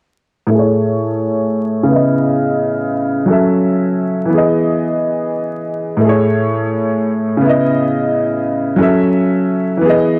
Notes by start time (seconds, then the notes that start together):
0.46 A2
0.51 A3
0.55 G#4
0.59 C#5
1.83 C#3
1.88 B3 E4
1.95 D#5
3.26 F#3 C#4
3.30 A4 E5
4.25 E3
4.29 B3
4.33 G#4
4.38 D#5
5.97 A2
6.01 A3
6.05 G#4
6.09 C#5
7.37 C#3
7.41 B3
7.45 E4
7.50 D#5
8.76 F#3 C#4
8.80 A4 E5
9.77 E3
9.81 B3
9.85 G#4
9.89 D#5